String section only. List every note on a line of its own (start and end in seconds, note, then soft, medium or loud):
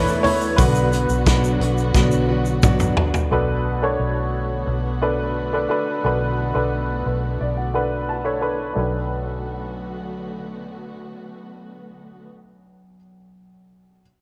0.00 0.55 E3 medium
0.00 0.54 A3 medium
0.00 3.27 B3 medium
0.00 0.55 A4 medium
0.58 3.28 D3 medium
0.58 3.28 F#3 medium
0.58 3.28 F#4 medium
3.32 8.74 D3 medium
3.32 8.74 A3 medium
3.32 8.74 B3 medium
3.32 8.74 F#4 medium
8.79 12.27 D3 soft
8.79 12.27 A3 medium
8.79 12.28 B3 soft
8.79 12.27 F#4 medium